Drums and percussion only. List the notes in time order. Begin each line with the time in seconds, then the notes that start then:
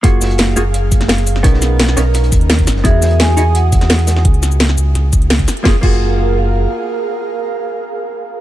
0.04 kick, closed hi-hat
0.21 snare, closed hi-hat, open hi-hat, shaker
0.31 closed hi-hat
0.38 snare, closed hi-hat
0.49 snare
0.57 closed hi-hat, shaker
0.74 closed hi-hat
0.92 kick, closed hi-hat, shaker
1.00 snare, closed hi-hat
1.08 snare, closed hi-hat
1.18 closed hi-hat
1.26 closed hi-hat, open hi-hat, shaker
1.35 snare
1.44 kick, closed hi-hat
1.54 snare
1.62 snare, closed hi-hat, shaker
1.79 snare, closed hi-hat
1.88 snare
1.97 snare, closed hi-hat, shaker
2.14 snare, closed hi-hat
2.24 closed hi-hat
2.32 kick, closed hi-hat, shaker
2.41 closed hi-hat
2.50 snare, closed hi-hat
2.59 kick, closed hi-hat
2.67 snare, closed hi-hat, open hi-hat, shaker
2.76 snare
2.85 kick, closed hi-hat
3.01 snare, closed hi-hat, open hi-hat, shaker
3.11 closed hi-hat
3.20 snare, closed hi-hat
3.29 snare
3.37 closed hi-hat, shaker
3.55 closed hi-hat
3.72 kick, closed hi-hat, shaker
3.81 snare, closed hi-hat
3.90 snare, closed hi-hat
3.99 closed hi-hat
4.07 snare, closed hi-hat, open hi-hat, shaker
4.16 snare
4.25 kick, closed hi-hat
4.34 closed hi-hat
4.43 snare, closed hi-hat, shaker
4.52 shaker
4.60 snare, closed hi-hat
4.69 snare
4.78 closed hi-hat, shaker
4.95 snare, closed hi-hat
5.13 kick, closed hi-hat, shaker
5.22 closed hi-hat
5.30 snare, closed hi-hat
5.39 kick, closed hi-hat
5.48 snare, open hi-hat, shaker
5.57 closed hi-hat
5.65 kick, snare
5.83 kick, crash